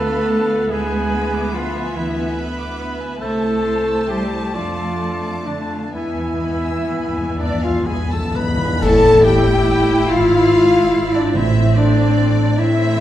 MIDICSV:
0, 0, Header, 1, 12, 480
1, 0, Start_track
1, 0, Key_signature, 0, "minor"
1, 0, Tempo, 831025
1, 404, Time_signature, 6, 3, 24, 8
1, 1851, Tempo, 883652
1, 2331, Tempo, 906344
1, 2811, Tempo, 955414
1, 4731, Tempo, 835655
1, 7135, End_track
2, 0, Start_track
2, 0, Title_t, "Violin section"
2, 0, Program_c, 0, 48
2, 48, Note_on_c, 0, 83, 63
2, 161, Note_on_c, 0, 81, 60
2, 166, Note_off_c, 0, 83, 0
2, 279, Note_on_c, 0, 77, 54
2, 282, Note_off_c, 0, 81, 0
2, 399, Note_on_c, 0, 76, 66
2, 400, Note_off_c, 0, 77, 0
2, 513, Note_off_c, 0, 76, 0
2, 517, Note_on_c, 0, 80, 60
2, 642, Note_off_c, 0, 80, 0
2, 646, Note_on_c, 0, 83, 58
2, 768, Note_off_c, 0, 83, 0
2, 771, Note_on_c, 0, 86, 54
2, 890, Note_off_c, 0, 86, 0
2, 895, Note_on_c, 0, 83, 61
2, 1013, Note_off_c, 0, 83, 0
2, 1013, Note_on_c, 0, 80, 63
2, 1130, Note_on_c, 0, 76, 66
2, 1131, Note_off_c, 0, 80, 0
2, 1249, Note_off_c, 0, 76, 0
2, 1256, Note_on_c, 0, 80, 58
2, 1371, Note_off_c, 0, 80, 0
2, 1375, Note_on_c, 0, 83, 57
2, 1491, Note_off_c, 0, 83, 0
2, 1498, Note_on_c, 0, 86, 62
2, 1613, Note_off_c, 0, 86, 0
2, 1615, Note_on_c, 0, 83, 59
2, 1731, Note_on_c, 0, 80, 53
2, 1733, Note_off_c, 0, 83, 0
2, 1851, Note_on_c, 0, 76, 65
2, 1854, Note_off_c, 0, 80, 0
2, 1962, Note_off_c, 0, 76, 0
2, 1969, Note_on_c, 0, 81, 59
2, 2089, Note_off_c, 0, 81, 0
2, 2089, Note_on_c, 0, 84, 51
2, 2208, Note_on_c, 0, 88, 51
2, 2211, Note_off_c, 0, 84, 0
2, 2327, Note_on_c, 0, 84, 55
2, 2331, Note_off_c, 0, 88, 0
2, 2447, Note_on_c, 0, 81, 58
2, 2449, Note_off_c, 0, 84, 0
2, 2568, Note_on_c, 0, 74, 58
2, 2569, Note_off_c, 0, 81, 0
2, 2681, Note_off_c, 0, 74, 0
2, 2690, Note_on_c, 0, 77, 54
2, 2811, Note_on_c, 0, 81, 49
2, 2812, Note_off_c, 0, 77, 0
2, 2928, Note_off_c, 0, 81, 0
2, 2929, Note_on_c, 0, 86, 49
2, 3047, Note_off_c, 0, 86, 0
2, 3049, Note_on_c, 0, 81, 50
2, 3168, Note_off_c, 0, 81, 0
2, 3169, Note_on_c, 0, 77, 48
2, 3283, Note_on_c, 0, 76, 58
2, 3289, Note_off_c, 0, 77, 0
2, 3398, Note_off_c, 0, 76, 0
2, 3404, Note_on_c, 0, 80, 51
2, 3527, Note_off_c, 0, 80, 0
2, 3529, Note_on_c, 0, 83, 50
2, 3645, Note_on_c, 0, 88, 46
2, 3650, Note_off_c, 0, 83, 0
2, 3767, Note_on_c, 0, 83, 45
2, 3769, Note_off_c, 0, 88, 0
2, 3890, Note_off_c, 0, 83, 0
2, 3894, Note_on_c, 0, 80, 49
2, 4009, Note_on_c, 0, 74, 65
2, 4009, Note_on_c, 0, 76, 55
2, 4014, Note_off_c, 0, 80, 0
2, 4124, Note_off_c, 0, 74, 0
2, 4132, Note_off_c, 0, 76, 0
2, 4132, Note_on_c, 0, 77, 66
2, 4132, Note_on_c, 0, 80, 48
2, 4250, Note_off_c, 0, 80, 0
2, 4255, Note_off_c, 0, 77, 0
2, 4255, Note_on_c, 0, 83, 56
2, 4256, Note_on_c, 0, 80, 67
2, 4376, Note_off_c, 0, 80, 0
2, 4378, Note_off_c, 0, 83, 0
2, 4380, Note_on_c, 0, 81, 70
2, 4380, Note_on_c, 0, 88, 56
2, 4502, Note_off_c, 0, 81, 0
2, 4502, Note_off_c, 0, 88, 0
2, 4502, Note_on_c, 0, 83, 50
2, 4503, Note_off_c, 0, 83, 0
2, 4503, Note_on_c, 0, 83, 80
2, 4621, Note_on_c, 0, 80, 63
2, 4731, Note_on_c, 0, 81, 103
2, 4732, Note_off_c, 0, 80, 0
2, 4732, Note_off_c, 0, 83, 0
2, 4976, Note_off_c, 0, 81, 0
2, 4976, Note_on_c, 0, 79, 97
2, 5452, Note_off_c, 0, 79, 0
2, 5460, Note_on_c, 0, 77, 104
2, 6062, Note_on_c, 0, 74, 84
2, 6063, Note_off_c, 0, 77, 0
2, 6176, Note_on_c, 0, 76, 97
2, 6183, Note_off_c, 0, 74, 0
2, 6413, Note_off_c, 0, 76, 0
2, 6418, Note_on_c, 0, 74, 85
2, 6891, Note_off_c, 0, 74, 0
2, 6892, Note_on_c, 0, 76, 94
2, 7135, Note_off_c, 0, 76, 0
2, 7135, End_track
3, 0, Start_track
3, 0, Title_t, "Flute section"
3, 0, Program_c, 1, 73
3, 0, Note_on_c, 1, 81, 79
3, 250, Note_off_c, 1, 81, 0
3, 404, Note_on_c, 1, 80, 85
3, 879, Note_off_c, 1, 80, 0
3, 891, Note_on_c, 1, 77, 73
3, 1130, Note_on_c, 1, 76, 61
3, 1131, Note_off_c, 1, 77, 0
3, 1368, Note_off_c, 1, 76, 0
3, 1851, Note_on_c, 1, 81, 78
3, 2310, Note_off_c, 1, 81, 0
3, 2327, Note_on_c, 1, 79, 66
3, 2568, Note_off_c, 1, 79, 0
3, 2569, Note_on_c, 1, 77, 66
3, 3037, Note_off_c, 1, 77, 0
3, 3047, Note_on_c, 1, 74, 58
3, 3286, Note_on_c, 1, 76, 66
3, 3288, Note_off_c, 1, 74, 0
3, 3856, Note_off_c, 1, 76, 0
3, 4011, Note_on_c, 1, 74, 68
3, 4125, Note_off_c, 1, 74, 0
3, 4134, Note_on_c, 1, 77, 57
3, 4256, Note_off_c, 1, 77, 0
3, 4257, Note_on_c, 1, 80, 70
3, 4379, Note_off_c, 1, 80, 0
3, 4384, Note_on_c, 1, 81, 62
3, 4504, Note_off_c, 1, 81, 0
3, 4505, Note_on_c, 1, 83, 66
3, 4733, Note_off_c, 1, 83, 0
3, 4733, Note_on_c, 1, 81, 96
3, 4972, Note_off_c, 1, 81, 0
3, 4975, Note_on_c, 1, 79, 105
3, 5451, Note_off_c, 1, 79, 0
3, 5462, Note_on_c, 1, 77, 98
3, 6064, Note_off_c, 1, 77, 0
3, 6071, Note_on_c, 1, 74, 83
3, 6187, Note_off_c, 1, 74, 0
3, 6189, Note_on_c, 1, 76, 92
3, 6422, Note_on_c, 1, 74, 85
3, 6424, Note_off_c, 1, 76, 0
3, 6892, Note_off_c, 1, 74, 0
3, 6894, Note_on_c, 1, 76, 100
3, 7135, Note_off_c, 1, 76, 0
3, 7135, End_track
4, 0, Start_track
4, 0, Title_t, "Violin section"
4, 0, Program_c, 2, 48
4, 0, Note_on_c, 2, 77, 70
4, 400, Note_off_c, 2, 77, 0
4, 404, Note_on_c, 2, 76, 70
4, 1830, Note_off_c, 2, 76, 0
4, 1856, Note_on_c, 2, 81, 68
4, 3289, Note_on_c, 2, 80, 53
4, 3290, Note_off_c, 2, 81, 0
4, 4000, Note_off_c, 2, 80, 0
4, 4015, Note_on_c, 2, 74, 78
4, 4127, Note_off_c, 2, 74, 0
4, 4132, Note_on_c, 2, 77, 70
4, 4255, Note_off_c, 2, 77, 0
4, 4256, Note_on_c, 2, 80, 67
4, 4376, Note_off_c, 2, 80, 0
4, 4378, Note_on_c, 2, 81, 71
4, 4501, Note_off_c, 2, 81, 0
4, 4502, Note_on_c, 2, 83, 82
4, 4732, Note_off_c, 2, 83, 0
4, 4738, Note_on_c, 2, 81, 100
4, 4980, Note_off_c, 2, 81, 0
4, 4980, Note_on_c, 2, 79, 97
4, 5454, Note_off_c, 2, 79, 0
4, 5460, Note_on_c, 2, 77, 102
4, 6063, Note_off_c, 2, 77, 0
4, 6070, Note_on_c, 2, 74, 80
4, 6187, Note_off_c, 2, 74, 0
4, 6197, Note_on_c, 2, 76, 89
4, 6423, Note_off_c, 2, 76, 0
4, 6431, Note_on_c, 2, 74, 85
4, 6897, Note_off_c, 2, 74, 0
4, 6897, Note_on_c, 2, 76, 104
4, 7135, Note_off_c, 2, 76, 0
4, 7135, End_track
5, 0, Start_track
5, 0, Title_t, "Cor anglais"
5, 0, Program_c, 3, 69
5, 0, Note_on_c, 3, 71, 86
5, 379, Note_off_c, 3, 71, 0
5, 404, Note_on_c, 3, 71, 69
5, 1115, Note_off_c, 3, 71, 0
5, 1135, Note_on_c, 3, 71, 74
5, 1856, Note_on_c, 3, 72, 72
5, 1864, Note_off_c, 3, 71, 0
5, 2571, Note_on_c, 3, 74, 69
5, 2579, Note_off_c, 3, 72, 0
5, 3126, Note_off_c, 3, 74, 0
5, 3291, Note_on_c, 3, 76, 58
5, 4360, Note_off_c, 3, 76, 0
5, 7135, End_track
6, 0, Start_track
6, 0, Title_t, "Clarinet"
6, 0, Program_c, 4, 71
6, 0, Note_on_c, 4, 69, 93
6, 407, Note_on_c, 4, 68, 83
6, 416, Note_off_c, 4, 69, 0
6, 889, Note_on_c, 4, 65, 77
6, 898, Note_off_c, 4, 68, 0
6, 1131, Note_on_c, 4, 64, 67
6, 1140, Note_off_c, 4, 65, 0
6, 1369, Note_off_c, 4, 64, 0
6, 1854, Note_on_c, 4, 69, 95
6, 2337, Note_on_c, 4, 67, 78
6, 2345, Note_off_c, 4, 69, 0
6, 2572, Note_on_c, 4, 65, 76
6, 2580, Note_off_c, 4, 67, 0
6, 3044, Note_on_c, 4, 62, 76
6, 3052, Note_off_c, 4, 65, 0
6, 3284, Note_off_c, 4, 62, 0
6, 3287, Note_on_c, 4, 64, 67
6, 3999, Note_off_c, 4, 64, 0
6, 4013, Note_on_c, 4, 62, 63
6, 4126, Note_off_c, 4, 62, 0
6, 4139, Note_on_c, 4, 65, 64
6, 4253, Note_on_c, 4, 68, 68
6, 4260, Note_off_c, 4, 65, 0
6, 4377, Note_off_c, 4, 68, 0
6, 4380, Note_on_c, 4, 69, 70
6, 4501, Note_on_c, 4, 71, 81
6, 4509, Note_off_c, 4, 69, 0
6, 4734, Note_on_c, 4, 69, 92
6, 4743, Note_off_c, 4, 71, 0
6, 4977, Note_on_c, 4, 67, 94
6, 4986, Note_off_c, 4, 69, 0
6, 5463, Note_on_c, 4, 65, 94
6, 5471, Note_off_c, 4, 67, 0
6, 6063, Note_on_c, 4, 62, 79
6, 6072, Note_off_c, 4, 65, 0
6, 6193, Note_on_c, 4, 64, 91
6, 6202, Note_off_c, 4, 62, 0
6, 6360, Note_off_c, 4, 64, 0
6, 6430, Note_on_c, 4, 62, 94
6, 6898, Note_on_c, 4, 64, 84
6, 6907, Note_off_c, 4, 62, 0
6, 7135, Note_off_c, 4, 64, 0
6, 7135, End_track
7, 0, Start_track
7, 0, Title_t, "French horn section"
7, 0, Program_c, 5, 60
7, 0, Note_on_c, 5, 59, 69
7, 0, Note_on_c, 5, 65, 74
7, 381, Note_off_c, 5, 65, 0
7, 406, Note_on_c, 5, 64, 72
7, 1831, Note_off_c, 5, 64, 0
7, 1845, Note_on_c, 5, 57, 73
7, 1845, Note_on_c, 5, 64, 73
7, 1853, Note_off_c, 5, 59, 0
7, 2546, Note_off_c, 5, 57, 0
7, 2546, Note_off_c, 5, 64, 0
7, 2568, Note_on_c, 5, 62, 64
7, 2569, Note_on_c, 5, 57, 69
7, 3196, Note_off_c, 5, 57, 0
7, 3196, Note_off_c, 5, 62, 0
7, 3282, Note_on_c, 5, 56, 55
7, 3282, Note_on_c, 5, 59, 61
7, 3996, Note_off_c, 5, 56, 0
7, 3996, Note_off_c, 5, 59, 0
7, 4009, Note_on_c, 5, 62, 88
7, 4124, Note_off_c, 5, 62, 0
7, 4134, Note_on_c, 5, 65, 81
7, 4255, Note_on_c, 5, 68, 79
7, 4256, Note_off_c, 5, 65, 0
7, 4378, Note_off_c, 5, 68, 0
7, 4380, Note_on_c, 5, 69, 72
7, 4495, Note_on_c, 5, 71, 79
7, 4502, Note_off_c, 5, 69, 0
7, 4728, Note_off_c, 5, 71, 0
7, 4728, Note_on_c, 5, 69, 113
7, 4969, Note_off_c, 5, 69, 0
7, 4980, Note_on_c, 5, 67, 113
7, 5462, Note_on_c, 5, 65, 121
7, 5464, Note_off_c, 5, 67, 0
7, 6064, Note_off_c, 5, 65, 0
7, 6070, Note_on_c, 5, 62, 91
7, 6185, Note_off_c, 5, 62, 0
7, 6185, Note_on_c, 5, 64, 100
7, 6421, Note_on_c, 5, 62, 103
7, 6422, Note_off_c, 5, 64, 0
7, 6883, Note_off_c, 5, 62, 0
7, 6892, Note_on_c, 5, 64, 113
7, 7135, Note_off_c, 5, 64, 0
7, 7135, End_track
8, 0, Start_track
8, 0, Title_t, "Viola section"
8, 0, Program_c, 6, 48
8, 0, Note_on_c, 6, 59, 67
8, 1850, Note_off_c, 6, 59, 0
8, 1854, Note_on_c, 6, 57, 62
8, 3269, Note_off_c, 6, 57, 0
8, 3288, Note_on_c, 6, 59, 55
8, 4604, Note_off_c, 6, 59, 0
8, 4733, Note_on_c, 6, 64, 100
8, 6162, Note_off_c, 6, 64, 0
8, 6184, Note_on_c, 6, 60, 81
8, 6881, Note_off_c, 6, 60, 0
8, 6887, Note_on_c, 6, 60, 90
8, 7135, Note_off_c, 6, 60, 0
8, 7135, End_track
9, 0, Start_track
9, 0, Title_t, "Cello section"
9, 0, Program_c, 7, 48
9, 0, Note_on_c, 7, 57, 84
9, 403, Note_on_c, 7, 56, 83
9, 404, Note_off_c, 7, 57, 0
9, 879, Note_off_c, 7, 56, 0
9, 889, Note_on_c, 7, 53, 69
9, 1129, Note_off_c, 7, 53, 0
9, 1130, Note_on_c, 7, 52, 56
9, 1368, Note_off_c, 7, 52, 0
9, 1854, Note_on_c, 7, 57, 76
9, 2311, Note_off_c, 7, 57, 0
9, 2336, Note_on_c, 7, 55, 74
9, 2572, Note_off_c, 7, 55, 0
9, 2574, Note_on_c, 7, 53, 64
9, 3049, Note_off_c, 7, 53, 0
9, 3051, Note_on_c, 7, 50, 57
9, 3285, Note_off_c, 7, 50, 0
9, 3291, Note_on_c, 7, 52, 66
9, 4483, Note_off_c, 7, 52, 0
9, 4735, Note_on_c, 7, 45, 98
9, 5378, Note_off_c, 7, 45, 0
9, 5466, Note_on_c, 7, 44, 83
9, 6101, Note_off_c, 7, 44, 0
9, 6190, Note_on_c, 7, 45, 84
9, 6811, Note_off_c, 7, 45, 0
9, 6892, Note_on_c, 7, 45, 83
9, 7135, Note_off_c, 7, 45, 0
9, 7135, End_track
10, 0, Start_track
10, 0, Title_t, "Timpani"
10, 0, Program_c, 8, 47
10, 3293, Note_on_c, 8, 40, 33
10, 3331, Note_off_c, 8, 40, 0
10, 3337, Note_on_c, 8, 40, 29
10, 3375, Note_off_c, 8, 40, 0
10, 3381, Note_on_c, 8, 40, 31
10, 3419, Note_off_c, 8, 40, 0
10, 3424, Note_on_c, 8, 40, 35
10, 3459, Note_off_c, 8, 40, 0
10, 3465, Note_on_c, 8, 40, 35
10, 3499, Note_off_c, 8, 40, 0
10, 3505, Note_on_c, 8, 40, 32
10, 3546, Note_off_c, 8, 40, 0
10, 3552, Note_on_c, 8, 40, 42
10, 3591, Note_off_c, 8, 40, 0
10, 3596, Note_on_c, 8, 40, 44
10, 3632, Note_off_c, 8, 40, 0
10, 3638, Note_on_c, 8, 40, 46
10, 3678, Note_off_c, 8, 40, 0
10, 3727, Note_on_c, 8, 40, 44
10, 3764, Note_off_c, 8, 40, 0
10, 3770, Note_on_c, 8, 40, 44
10, 3808, Note_off_c, 8, 40, 0
10, 3814, Note_on_c, 8, 40, 43
10, 3853, Note_off_c, 8, 40, 0
10, 3861, Note_on_c, 8, 40, 51
10, 3898, Note_off_c, 8, 40, 0
10, 3905, Note_on_c, 8, 40, 56
10, 3940, Note_off_c, 8, 40, 0
10, 3947, Note_on_c, 8, 40, 52
10, 3983, Note_off_c, 8, 40, 0
10, 3989, Note_on_c, 8, 40, 57
10, 4027, Note_off_c, 8, 40, 0
10, 4033, Note_on_c, 8, 40, 59
10, 4071, Note_off_c, 8, 40, 0
10, 4080, Note_on_c, 8, 40, 63
10, 4116, Note_off_c, 8, 40, 0
10, 4125, Note_on_c, 8, 40, 63
10, 4161, Note_off_c, 8, 40, 0
10, 4168, Note_on_c, 8, 40, 68
10, 4205, Note_off_c, 8, 40, 0
10, 4215, Note_on_c, 8, 40, 67
10, 4250, Note_off_c, 8, 40, 0
10, 4257, Note_on_c, 8, 40, 68
10, 4293, Note_off_c, 8, 40, 0
10, 4299, Note_on_c, 8, 40, 56
10, 4336, Note_off_c, 8, 40, 0
10, 4342, Note_on_c, 8, 40, 65
10, 4378, Note_off_c, 8, 40, 0
10, 4384, Note_on_c, 8, 40, 67
10, 4422, Note_off_c, 8, 40, 0
10, 4430, Note_on_c, 8, 40, 76
10, 4466, Note_off_c, 8, 40, 0
10, 4472, Note_on_c, 8, 40, 77
10, 4511, Note_off_c, 8, 40, 0
10, 4519, Note_on_c, 8, 40, 101
10, 4555, Note_off_c, 8, 40, 0
10, 4562, Note_on_c, 8, 40, 95
10, 4595, Note_off_c, 8, 40, 0
10, 4601, Note_on_c, 8, 40, 97
10, 4636, Note_off_c, 8, 40, 0
10, 4642, Note_on_c, 8, 40, 97
10, 4678, Note_off_c, 8, 40, 0
10, 4685, Note_on_c, 8, 40, 108
10, 4719, Note_off_c, 8, 40, 0
10, 6184, Note_on_c, 8, 45, 102
10, 6869, Note_off_c, 8, 45, 0
10, 7135, End_track
11, 0, Start_track
11, 0, Title_t, "Double bass section"
11, 0, Program_c, 10, 48
11, 0, Note_on_c, 10, 38, 70
11, 280, Note_off_c, 10, 38, 0
11, 398, Note_on_c, 10, 38, 69
11, 1006, Note_off_c, 10, 38, 0
11, 1127, Note_on_c, 10, 38, 61
11, 1728, Note_off_c, 10, 38, 0
11, 1852, Note_on_c, 10, 36, 73
11, 2451, Note_off_c, 10, 36, 0
11, 2570, Note_on_c, 10, 41, 56
11, 3167, Note_off_c, 10, 41, 0
11, 3289, Note_on_c, 10, 40, 61
11, 3893, Note_off_c, 10, 40, 0
11, 4013, Note_on_c, 10, 35, 55
11, 4619, Note_off_c, 10, 35, 0
11, 4732, Note_on_c, 10, 33, 93
11, 5377, Note_off_c, 10, 33, 0
11, 5463, Note_on_c, 10, 32, 84
11, 6099, Note_off_c, 10, 32, 0
11, 6186, Note_on_c, 10, 33, 102
11, 6810, Note_off_c, 10, 33, 0
11, 6892, Note_on_c, 10, 33, 81
11, 7135, Note_off_c, 10, 33, 0
11, 7135, End_track
12, 0, Start_track
12, 0, Title_t, "Drums"
12, 4735, Note_on_c, 9, 35, 88
12, 4735, Note_on_c, 9, 49, 74
12, 4793, Note_off_c, 9, 35, 0
12, 4793, Note_off_c, 9, 49, 0
12, 7135, End_track
0, 0, End_of_file